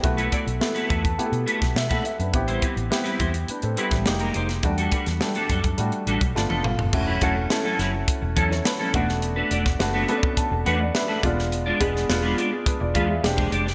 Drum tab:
CC |----------------|----------------|----------------|x---------------|
HH |xxxx-xxxxxxx-xxx|xxxx-xxxxxxx-xxx|xxxx-xxxxxxx----|--x-x-x-x-x-x-x-|
SD |----o------oo---|----o------oo--o|---oo-------o---|----o-o----oo--o|
T1 |----------------|----------------|-------------o--|----------------|
T2 |----------------|----------------|--------------o-|----------------|
FT |----------------|----------------|---------------o|----------------|
BD |o-o---oo---o-o--|o-o---o----o----|o-o---oo---o----|o-o-----o-o---o-|

CC |----------------|----------------|
HH |x-x-x-x-x-x-x-x-|x-x-x-x-x-x-x-x-|
SD |---oo-------o--o|---oo-------o--o|
T1 |----------------|----------------|
T2 |----------------|----------------|
FT |----------------|----------------|
BD |---o---oo-----o-|--o-----o-o--o--|